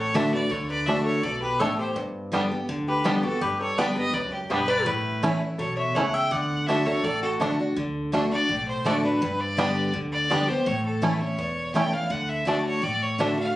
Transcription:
Already playing: upright bass A1, steel-string acoustic guitar A2, resonator guitar played with a steel bar A4, fiddle C#5
0.14 steel-string acoustic guitar D3 A3 D4 F#4, five-string banjo A3 D4, resonator guitar played with a steel bar A4, fiddle E5
0.33 steel-string acoustic guitar D4 F#4, resonator guitar played with a steel bar B4, fiddle D5
0.50 upright bass D2, steel-string acoustic guitar D3, resonator guitar played with a steel bar A4, fiddle C#5
0.70 resonator guitar played with a steel bar B4, fiddle D5
0.86 upright bass C#2, steel-string acoustic guitar A3 D4 F#4, five-string banjo A3 D4, resonator guitar played with a steel bar A4, fiddle E5
1.05 resonator guitar played with a steel bar A4, fiddle C#5
1.23 upright bass B1, steel-string acoustic guitar B2, resonator guitar played with a steel bar A4, fiddle D5
1.42 resonator guitar played with a steel bar G4, fiddle B4
1.59 upright bass A1, steel-string acoustic guitar A2, five-string banjo A3 D4, resonator guitar played with a steel bar A4, fiddle C#5
1.78 resonator guitar played with a steel bar G4, fiddle C5
1.96 upright bass G1, steel-string acoustic guitar G2
2.32 steel-string acoustic guitar D3 G3 B3 G4, five-string banjo G3 B3 D4
2.51 steel-string acoustic guitar B3 G4
2.69 upright bass D2, steel-string acoustic guitar D3
2.88 resonator guitar played with a steel bar G4, fiddle B4
3.04 steel-string acoustic guitar D3 G3 B3 G4, five-string banjo G3 B3 D4, resonator guitar played with a steel bar D4, fiddle G4
3.23 steel-string acoustic guitar B3 G4, resonator guitar played with a steel bar F#4, fiddle A4
3.41 upright bass G1, steel-string acoustic guitar G2, resonator guitar played with a steel bar G4, fiddle B4
3.61 resonator guitar played with a steel bar A4, fiddle C#5
3.78 steel-string acoustic guitar D3 G3 B3 G4, five-string banjo G3 B3 D4, resonator guitar played with a steel bar B4, fiddle D5
3.96 steel-string acoustic guitar B3 G4, resonator guitar played with a steel bar B4, fiddle D#5
4.13 upright bass C#2, steel-string acoustic guitar F#2, resonator guitar played with a steel bar B4, fiddle D5
4.32 fiddle G4, muted resonator guitar played with a steel bar stroke
4.50 upright bass B1, steel-string acoustic guitar G2, five-string banjo G3 B3 D4, resonator guitar played with a steel bar G4, fiddle B4
4.68 resonator guitar played with a steel bar B4, fiddle D5
4.85 upright bass A1, steel-string acoustic guitar A2, resonator guitar played with a steel bar E4, fiddle B4
5.23 steel-string acoustic guitar E3 A3 C#4 E4, five-string banjo A3 C#4 E4
5.40 steel-string acoustic guitar C#4 E4
5.58 upright bass B1, steel-string acoustic guitar B2, resonator guitar played with a steel bar A4, fiddle C#5
5.77 resonator guitar played with a steel bar C#5, fiddle E5
5.95 upright bass C#2, steel-string acoustic guitar C#3, five-string banjo A3 C#4 E4, resonator guitar played with a steel bar C#5, fiddle F#5
6.14 resonator guitar played with a steel bar E5, fiddle G5
6.31 upright bass D2, steel-string acoustic guitar D3, resonator guitar played with a steel bar D5, fiddle F#5
6.67 steel-string acoustic guitar D3 A3 D4 F#4, five-string banjo A3 D4, resonator guitar played with a steel bar A4, fiddle E5
6.86 steel-string acoustic guitar D4 F#4, resonator guitar played with a steel bar A4, fiddle C#5
7.04 upright bass A1, steel-string acoustic guitar A2, resonator guitar played with a steel bar A4, fiddle D5
7.22 resonator guitar played with a steel bar F#4, fiddle A4
7.40 steel-string acoustic guitar D3 A3 D4 F#4, five-string banjo A3 D4
7.59 steel-string acoustic guitar D4 F#4
7.76 upright bass D2, steel-string acoustic guitar D3
8.12 steel-string acoustic guitar D3 A3 D4 F#4, five-string banjo A3 D4
8.31 steel-string acoustic guitar D4 F#4, fiddle D5
8.49 upright bass B1, steel-string acoustic guitar A2
8.68 fiddle C5
8.85 upright bass A1, steel-string acoustic guitar D3 A3 D4 F#4, five-string banjo A3 D4, fiddle D5
9.03 steel-string acoustic guitar D4 F#4, fiddle B4
9.21 upright bass G1, steel-string acoustic guitar G2
9.40 fiddle D5
9.57 steel-string acoustic guitar D3 G3 B3 G4, five-string banjo G3 B3 D4
9.94 upright bass D2, steel-string acoustic guitar D3
10.12 fiddle D5
10.30 steel-string acoustic guitar D3 G3 B3 G4, five-string banjo G3 B3 D4
10.48 steel-string acoustic guitar B3 G4, fiddle C5
10.66 upright bass A1, steel-string acoustic guitar A2, fiddle C#5
10.86 fiddle A4
11.02 steel-string acoustic guitar E3 A3 C#4 E4, five-string banjo A3 C#4 E4
11.20 steel-string acoustic guitar C#4 E4, fiddle C#5
11.38 upright bass E1, steel-string acoustic guitar E2
11.74 steel-string acoustic guitar E3 A3 C#4 E4, five-string banjo A3 C#4 E4, fiddle G5
11.92 steel-string acoustic guitar C#4 E4, fiddle F5
12.10 upright bass D2, steel-string acoustic guitar D3, fiddle F#5
12.29 fiddle E5
12.45 steel-string acoustic guitar D3 A3 D4 F#4, five-string banjo A3 D4, fiddle D5
12.66 fiddle C#5
12.82 upright bass A1, steel-string acoustic guitar A2, fiddle D5
13.02 fiddle C#5
13.18 steel-string acoustic guitar D3 A3 D4 F#4, five-string banjo A3 D4, fiddle E5
13.37 steel-string acoustic guitar D4 F#4, fiddle F5

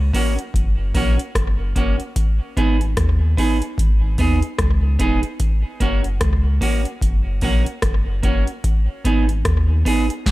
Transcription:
Already playing: sub bass C#2
0.14 clean electric guitar A#3 C#4 F#4, kick, open hi-hat
0.39 closed hi-hat
0.54 sub bass F#1, kick, closed hi-hat
0.94 sub bass A#1, clean electric guitar A#3 C#4 F#4, kick, open hi-hat
1.19 closed hi-hat
1.35 sub bass F#1, kick, cross-stick, closed hi-hat
1.76 sub bass F#1, clean electric guitar A#3 C#4 F#4, kick, closed hi-hat
2.00 closed hi-hat
2.16 kick, closed hi-hat
2.57 sub bass G#1, clean electric guitar B3 D#4 G#4, kick, closed hi-hat
2.81 closed hi-hat
2.97 sub bass D#2, kick, cross-stick, closed hi-hat
3.37 clean electric guitar B3 D#4 G#4, kick, open hi-hat
3.62 closed hi-hat
3.78 sub bass G#1, kick, closed hi-hat
4.18 sub bass D#2, clean electric guitar B3 D#4 G#4, kick, open hi-hat
4.42 closed hi-hat
4.59 sub bass C#2, kick, cross-stick, closed hi-hat
4.99 sub bass E1, clean electric guitar B3 D#4 G#4, kick, closed hi-hat
5.23 closed hi-hat
5.40 kick, closed hi-hat
5.80 sub bass F#1, clean electric guitar A#3 C#4 F#4, kick, closed hi-hat
6.04 closed hi-hat
6.21 sub bass C#2, kick, cross-stick, closed hi-hat
6.61 clean electric guitar A#3 C#4 F#4, kick, open hi-hat
6.85 closed hi-hat
7.02 sub bass F#1, kick, closed hi-hat
7.41 sub bass A#1, clean electric guitar A#3 C#4 F#4, kick, open hi-hat
7.66 closed hi-hat
7.82 sub bass F#1, kick, cross-stick, closed hi-hat
8.23 sub bass F#1, clean electric guitar A#3 C#4 F#4, kick, closed hi-hat
8.47 closed hi-hat
8.64 kick, closed hi-hat
9.05 sub bass G#1, clean electric guitar B3 D#4 G#4, kick, closed hi-hat
9.29 closed hi-hat
9.45 sub bass D#2, kick, cross-stick, closed hi-hat
9.85 clean electric guitar B3 D#4 G#4, kick, open hi-hat
10.10 closed hi-hat
10.26 sub bass G#1, kick, snare, closed hi-hat

